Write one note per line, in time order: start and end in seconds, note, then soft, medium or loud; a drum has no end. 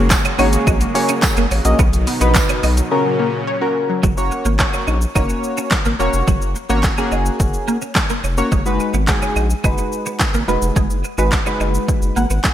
0.00 0.15 F#1 medium
0.00 1.77 C#3 medium
0.00 3.99 F#3 medium
0.00 1.76 G#3 medium
0.00 0.18 A#3 medium
0.00 1.75 A#3 medium
0.00 0.18 C#4 medium
0.00 0.18 F#4 medium
0.00 3.99 F#4 medium
0.00 0.18 G#4 medium
0.00 0.18 C#5 loud
0.10 0.21 F#5 medium
0.10 muted clean electric guitar stroke soft
0.10 kick loud
0.10 snare medium
0.10 clap loud
0.10 tambourine medium
0.10 shaker medium
0.25 0.33 C#4 medium
0.25 closed hi-hat medium
0.25 shaker medium
0.39 0.57 G#1 medium
0.39 0.78 A#3 medium
0.39 0.78 C#4 medium
0.39 0.49 C#4 medium
0.39 0.47 D#4 medium
0.39 0.78 F#4 medium
0.39 0.78 G#4 medium
0.39 0.78 C#5 loud
0.39 open hi-hat medium
0.39 shaker medium
0.53 0.63 A#3 medium
0.53 closed hi-hat medium
0.53 shaker medium
0.67 0.85 A#1 loud
0.67 0.77 F#3 loud
0.67 0.75 D#4 medium
0.67 kick loud
0.67 shaker medium
0.81 0.91 A#3 medium
0.81 muted clean electric guitar stroke soft
0.81 closed hi-hat medium
0.81 shaker medium
0.95 1.44 A#3 loud
0.95 1.44 C#4 medium
0.95 1.05 C#4 medium
0.95 1.44 F#4 medium
0.95 1.44 G#4 medium
0.95 1.44 C#5 loud
0.95 open hi-hat medium
0.95 shaker medium
1.09 1.17 C#4 medium
1.09 closed hi-hat medium
1.09 shaker medium
1.22 1.33 F#5 loud
1.22 muted clean electric guitar stroke soft
1.22 kick loud
1.22 snare loud
1.22 clap loud
1.22 tambourine loud
1.22 shaker medium
1.37 1.46 F#1 medium
1.37 1.45 A#3 medium
1.37 1.47 G#4 medium
1.37 closed hi-hat medium
1.37 shaker medium
1.51 1.60 A1 loud
1.51 1.59 C#4 medium
1.51 open hi-hat medium
1.51 shaker medium
1.65 1.74 A#1 loud
1.65 1.79 A#3 medium
1.65 1.75 A#3 medium
1.65 1.79 C#4 medium
1.65 1.79 F#4 medium
1.65 1.79 G#4 medium
1.65 1.79 D#5 loud
1.65 closed hi-hat medium
1.65 shaker medium
1.79 2.06 B1 loud
1.79 2.90 B2 medium
1.79 1.89 D#3 loud
1.79 2.90 D#3 medium
1.79 1.87 B3 medium
1.79 2.90 D#4 medium
1.79 kick loud
1.79 shaker medium
1.93 closed hi-hat medium
1.93 shaker medium
2.07 2.17 B3 medium
2.07 muted clean electric guitar stroke soft
2.07 open hi-hat medium
2.07 shaker medium
2.21 2.39 A#1 loud
2.21 2.29 B3 medium
2.21 2.70 D#4 loud
2.21 2.70 F#4 medium
2.21 2.31 F#4 medium
2.21 2.70 B4 loud
2.21 closed hi-hat medium
2.21 shaker medium
2.35 2.45 D#5 loud
2.35 muted clean electric guitar stroke soft
2.35 kick loud
2.35 snare medium
2.35 clap loud
2.35 tambourine medium
2.35 shaker medium
2.49 2.57 C#4 medium
2.49 closed hi-hat medium
2.49 shaker medium
2.63 2.81 B1 loud
2.63 2.73 B3 medium
2.63 2.71 D#4 medium
2.63 open hi-hat medium
2.63 shaker medium
2.77 2.87 F#3 medium
2.77 closed hi-hat medium
2.77 shaker medium
2.91 4.02 A#2 medium
2.91 4.02 C#3 medium
2.91 3.01 C#3 medium
2.91 4.02 C#4 medium
2.91 3.40 C#4 medium
2.91 3.40 F#4 medium
2.91 3.40 A#4 loud
3.05 3.15 F#3 medium
3.19 3.29 A#3 medium
3.47 3.57 C#5 loud
3.61 4.00 C#4 medium
3.61 4.01 F#4 medium
3.61 3.71 F#4 medium
3.61 4.01 A#4 medium
3.89 3.99 F#3 medium
4.03 4.31 F#1 loud
4.03 4.11 F#3 medium
4.03 kick loud
4.03 shaker medium
4.17 4.47 A#3 medium
4.17 4.47 C#4 medium
4.17 4.47 F#4 medium
4.17 4.47 C#5 loud
4.17 shaker medium
4.31 muted clean electric guitar stroke soft
4.31 shaker medium
4.45 4.63 G#1 medium
4.45 4.53 A#3 medium
4.45 shaker medium
4.59 4.99 A#3 medium
4.59 4.99 C#4 medium
4.59 4.99 F#4 medium
4.59 4.99 C#5 medium
4.59 muted clean electric guitar stroke soft
4.59 kick loud
4.59 snare medium
4.59 clap loud
4.59 shaker medium
4.73 4.81 C#4 medium
4.73 shaker medium
4.87 5.06 A#1 loud
4.87 4.95 D#4 medium
4.87 shaker medium
5.01 shaker medium
5.15 5.34 F#1 loud
5.15 5.74 A#3 medium
5.15 5.74 C#4 medium
5.15 5.23 D#4 medium
5.15 5.74 F#4 medium
5.15 5.74 C#5 loud
5.15 kick loud
5.15 shaker medium
5.29 muted clean electric guitar stroke soft
5.29 shaker medium
5.44 shaker medium
5.57 5.65 C#4 medium
5.57 shaker medium
5.71 kick loud
5.71 snare loud
5.71 clap loud
5.71 shaker medium
5.85 5.95 G#1 medium
5.85 5.93 A#3 medium
5.85 shaker medium
5.99 6.09 E1 medium
5.99 6.49 A#3 medium
5.99 6.07 A#3 medium
5.99 6.49 C#4 medium
5.99 6.49 F#4 medium
5.99 6.49 C#5 loud
5.99 shaker medium
6.13 6.23 F1 medium
6.13 shaker medium
6.28 6.55 F#1 loud
6.28 6.35 F#3 medium
6.28 kick loud
6.28 shaker medium
6.42 shaker medium
6.56 muted clean electric guitar stroke soft
6.56 shaker medium
6.69 6.88 G#1 medium
6.69 6.89 A#3 medium
6.69 6.78 A#3 medium
6.69 6.89 C#4 medium
6.69 6.89 F#4 medium
6.69 6.89 C#5 loud
6.69 shaker medium
6.83 muted clean electric guitar stroke soft
6.83 kick loud
6.83 snare medium
6.83 clap loud
6.83 shaker medium
6.98 7.76 A#3 medium
6.98 7.06 C#4 medium
6.98 7.76 C#4 medium
6.98 7.76 F#4 medium
6.98 7.76 G#4 loud
6.98 shaker medium
7.12 7.30 F#1 loud
7.12 7.20 D#4 medium
7.12 shaker soft
7.26 shaker medium
7.40 7.58 F#1 medium
7.40 muted clean electric guitar stroke soft
7.40 kick loud
7.40 shaker medium
7.54 shaker medium
7.68 7.76 A#3 medium
7.68 shaker medium
7.82 7.90 C#4 medium
7.82 shaker medium
7.95 muted clean electric guitar stroke soft
7.95 kick loud
7.95 snare loud
7.95 clap loud
7.95 shaker medium
8.10 8.18 A#3 medium
8.10 shaker medium
8.24 8.42 F1 loud
8.24 8.32 C#4 medium
8.24 shaker medium
8.38 8.52 A#3 medium
8.38 8.52 C#4 medium
8.38 8.52 F#4 medium
8.38 8.52 C#5 loud
8.38 shaker medium
8.52 8.79 F#1 loud
8.52 8.60 G#3 medium
8.52 kick loud
8.52 shaker medium
8.66 8.95 G#3 medium
8.66 8.95 D#4 medium
8.66 8.95 F#4 medium
8.66 8.96 B4 loud
8.66 shaker medium
8.80 muted clean electric guitar stroke soft
8.80 shaker medium
8.94 9.12 G#1 medium
8.94 9.02 B3 medium
8.94 shaker medium
9.07 9.47 G#3 medium
9.07 9.47 D#4 medium
9.07 9.47 F#4 medium
9.07 9.47 G#4 loud
9.07 muted clean electric guitar stroke soft
9.07 kick loud
9.07 snare medium
9.07 clap loud
9.07 shaker medium
9.22 9.30 C#4 medium
9.22 shaker medium
9.36 9.54 A#1 loud
9.36 9.44 D#4 medium
9.36 shaker medium
9.50 shaker medium
9.64 9.82 F#1 medium
9.64 10.23 G#3 medium
9.64 10.23 D#4 medium
9.64 9.72 D#4 medium
9.64 10.23 F#4 medium
9.64 10.23 B4 loud
9.64 kick loud
9.64 shaker medium
9.78 muted clean electric guitar stroke soft
9.78 shaker medium
9.92 shaker medium
10.06 10.14 B3 medium
10.06 shaker medium
10.20 muted clean electric guitar stroke soft
10.20 kick loud
10.20 snare loud
10.20 clap loud
10.20 shaker medium
10.34 10.43 G#1 medium
10.34 10.42 A#3 medium
10.34 shaker medium
10.48 10.57 E1 medium
10.48 10.97 G#3 medium
10.48 10.56 A#3 medium
10.48 10.97 D#4 medium
10.48 10.97 F#4 medium
10.48 10.97 B4 loud
10.48 shaker medium
10.62 10.71 F1 medium
10.62 shaker medium
10.76 11.03 F#1 loud
10.76 10.84 G#3 medium
10.76 kick loud
10.76 shaker medium
10.90 shaker medium
11.04 muted clean electric guitar stroke soft
11.04 shaker medium
11.18 11.36 G#1 medium
11.18 11.38 G#3 medium
11.18 11.26 B3 medium
11.18 11.38 D#4 medium
11.18 11.38 F#4 medium
11.18 11.38 B4 loud
11.18 shaker medium
11.32 muted clean electric guitar stroke soft
11.32 kick loud
11.32 snare medium
11.32 clap loud
11.32 shaker medium
11.46 12.25 G#3 medium
11.46 11.54 C#4 medium
11.46 12.25 D#4 medium
11.46 12.25 F#4 medium
11.46 12.25 B4 loud
11.46 shaker medium
11.60 11.78 F#1 loud
11.60 11.68 D#4 medium
11.60 shaker soft
11.74 shaker medium
11.88 muted clean electric guitar stroke soft
11.88 kick loud
11.88 shaker medium
12.02 12.11 F#1 medium
12.02 shaker medium
12.16 12.25 G#1 loud
12.16 12.24 A#3 medium
12.16 12.42 F#5 medium
12.16 shaker medium
12.30 12.39 G#1 medium
12.30 12.38 B3 medium
12.30 shaker medium
12.44 12.50 F#1 soft
12.44 12.54 G#5 medium
12.44 muted clean electric guitar stroke soft
12.44 kick loud
12.44 snare loud
12.44 clap loud
12.44 shaker medium